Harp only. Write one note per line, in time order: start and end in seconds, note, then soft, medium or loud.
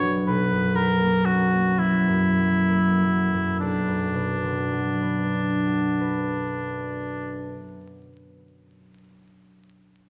0.00 0.26 B1 soft
0.00 0.32 F#2 soft
0.00 0.74 F#3 soft
0.00 0.31 B3 soft
0.00 0.31 D4 soft
0.00 3.46 F#4 soft
0.27 3.60 B1 soft
0.51 2.07 F#2 soft
0.75 1.78 F#3 soft
0.99 1.50 A#3 soft
1.25 3.67 C#4 soft
1.51 2.68 A#3 soft
1.79 2.37 F#3 soft
2.08 3.32 F#2 soft
2.39 3.02 F#3 soft
2.70 3.67 A#3 soft
3.03 4.71 F#3 soft
3.34 3.67 F#2 soft
3.61 7.51 B1 soft
3.88 7.78 F#2 soft
4.15 8.05 B2 soft
4.43 8.33 D3 soft
4.72 8.41 F#3 soft
5.01 8.35 B3 soft
5.34 8.36 D4 soft
5.67 8.36 F#4 soft
6.01 8.36 B4 soft